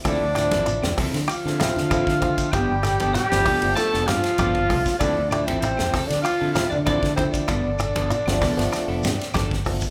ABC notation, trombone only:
X:1
M:4/4
L:1/16
Q:1/4=97
K:Ddor
V:1 name="Trombone"
D6 z2 F8 | G4 G4 A2 F6 | D2 D C C3 D F2 F D D2 C D- | D12 z4 |]